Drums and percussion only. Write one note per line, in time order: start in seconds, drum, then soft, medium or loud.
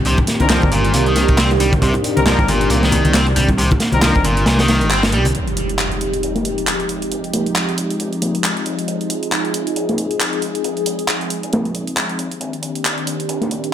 0.05 closed hi-hat soft
0.05 closed hi-hat medium
0.17 kick medium
0.17 closed hi-hat soft
0.17 high bongo medium
0.27 snare medium
0.27 closed hi-hat medium
0.40 closed hi-hat soft
0.40 high conga medium
0.49 snare loud
0.49 clap loud
0.49 closed hi-hat soft
0.49 closed hi-hat medium
0.49 low conga medium
0.62 kick medium
0.62 closed hi-hat soft
0.72 closed hi-hat medium
0.85 closed hi-hat soft
0.94 closed hi-hat soft
0.94 closed hi-hat medium
1.06 closed hi-hat soft
1.16 snare soft
1.16 closed hi-hat medium
1.16 high bongo medium
1.28 kick medium
1.28 closed hi-hat soft
1.38 snare loud
1.38 clap loud
1.38 closed hi-hat medium
1.38 closed hi-hat soft
1.51 closed hi-hat soft
1.51 high bongo medium
1.60 closed hi-hat medium
1.73 kick loud
1.73 closed hi-hat soft
1.73 high conga medium
1.82 kick loud
1.82 closed hi-hat soft
1.82 closed hi-hat medium
1.94 closed hi-hat soft
1.94 high bongo medium
2.04 closed hi-hat medium
2.17 closed hi-hat soft
2.17 high conga medium
2.26 snare loud
2.26 clap loud
2.26 closed hi-hat soft
2.26 closed hi-hat medium
2.26 low conga medium
2.39 kick medium
2.39 closed hi-hat soft
2.48 closed hi-hat medium
2.48 high conga medium
2.61 closed hi-hat soft
2.70 closed hi-hat medium
2.70 closed hi-hat soft
2.83 snare soft
2.83 closed hi-hat soft
2.92 closed hi-hat medium
2.92 high bongo medium
2.92 low conga medium
3.05 closed hi-hat soft
3.05 high conga medium
3.14 snare loud
3.14 clap medium
3.14 closed hi-hat medium
3.14 closed hi-hat soft
3.27 closed hi-hat soft
3.36 closed hi-hat medium
3.36 low conga medium
3.49 kick medium
3.49 closed hi-hat soft
3.49 high bongo medium
3.58 closed hi-hat soft
3.58 closed hi-hat medium
3.71 kick medium
3.71 closed hi-hat soft
3.71 high bongo medium
3.80 snare medium
3.80 closed hi-hat medium
3.92 closed hi-hat soft
3.92 high conga medium
4.02 snare loud
4.02 clap loud
4.02 closed hi-hat medium
4.02 closed hi-hat soft
4.02 low conga medium
4.15 kick medium
4.15 closed hi-hat soft
4.25 closed hi-hat medium
4.25 high conga medium
4.37 closed hi-hat soft
4.46 snare loud
4.46 closed hi-hat soft
4.46 closed hi-hat medium
4.59 snare loud
4.59 closed hi-hat soft
4.59 closed hi-hat medium
4.68 snare loud
4.68 closed hi-hat medium
4.68 high bongo medium
4.81 closed hi-hat soft
4.90 clap loud
4.90 closed hi-hat soft
4.92 closed hi-hat medium
5.03 snare loud
5.03 closed hi-hat soft
5.03 closed hi-hat medium
5.03 high bongo medium
5.12 closed hi-hat medium
5.25 closed hi-hat soft
5.25 closed hi-hat medium
5.25 high bongo medium
5.25 high conga medium
5.35 closed hi-hat soft
5.35 closed hi-hat medium
5.47 closed hi-hat soft
5.57 closed hi-hat medium
5.69 closed hi-hat soft
5.79 clap medium
5.79 closed hi-hat soft
5.79 closed hi-hat medium
5.92 closed hi-hat soft
6.01 closed hi-hat medium
6.13 closed hi-hat soft
6.23 closed hi-hat soft
6.23 closed hi-hat medium
6.36 snare soft
6.36 closed hi-hat soft
6.45 closed hi-hat medium
6.58 closed hi-hat soft
6.67 clap medium
6.67 closed hi-hat medium
6.67 closed hi-hat soft
6.80 closed hi-hat soft
6.89 closed hi-hat medium
7.02 closed hi-hat soft
7.12 closed hi-hat soft
7.12 closed hi-hat medium
7.24 closed hi-hat soft
7.34 snare medium
7.34 closed hi-hat medium
7.46 closed hi-hat soft
7.55 clap loud
7.55 closed hi-hat medium
7.55 closed hi-hat soft
7.69 closed hi-hat soft
7.78 closed hi-hat medium
7.90 closed hi-hat soft
8.00 closed hi-hat soft
8.00 closed hi-hat medium
8.13 closed hi-hat soft
8.22 snare soft
8.22 closed hi-hat medium
8.35 closed hi-hat soft
8.44 clap loud
8.44 closed hi-hat medium
8.44 closed hi-hat soft
8.57 closed hi-hat soft
8.66 closed hi-hat medium
8.79 closed hi-hat soft
8.88 closed hi-hat medium
8.88 closed hi-hat soft
9.01 closed hi-hat soft
9.10 closed hi-hat medium
9.23 closed hi-hat soft
9.32 clap loud
9.32 closed hi-hat soft
9.32 closed hi-hat medium
9.45 closed hi-hat soft
9.54 closed hi-hat medium
9.67 closed hi-hat soft
9.76 closed hi-hat soft
9.76 closed hi-hat medium
9.89 snare soft
9.89 closed hi-hat soft
9.98 closed hi-hat medium
10.11 closed hi-hat soft
10.20 clap loud
10.20 closed hi-hat soft
10.20 closed hi-hat medium
10.33 closed hi-hat soft
10.42 closed hi-hat medium
10.55 closed hi-hat soft
10.64 closed hi-hat medium
10.64 closed hi-hat soft
10.77 closed hi-hat soft
10.86 closed hi-hat medium
10.99 closed hi-hat soft
11.08 clap loud
11.08 closed hi-hat soft
11.08 closed hi-hat medium
11.21 closed hi-hat soft
11.21 closed hi-hat medium
11.30 closed hi-hat medium
11.43 closed hi-hat soft
11.43 closed hi-hat medium
11.53 snare medium
11.53 closed hi-hat soft
11.53 closed hi-hat medium
11.65 closed hi-hat soft
11.75 closed hi-hat medium
11.87 closed hi-hat soft
11.96 clap loud
11.96 closed hi-hat medium
11.96 closed hi-hat soft
12.09 closed hi-hat soft
12.19 closed hi-hat medium
12.31 closed hi-hat soft
12.41 closed hi-hat medium
12.41 closed hi-hat soft
12.53 closed hi-hat soft
12.62 closed hi-hat medium
12.75 closed hi-hat soft
12.85 clap medium
12.85 closed hi-hat medium
12.85 closed hi-hat soft
12.98 closed hi-hat soft
13.07 closed hi-hat medium
13.20 closed hi-hat soft
13.29 closed hi-hat medium
13.29 closed hi-hat soft
13.42 snare soft
13.42 closed hi-hat soft
13.51 closed hi-hat medium
13.64 closed hi-hat soft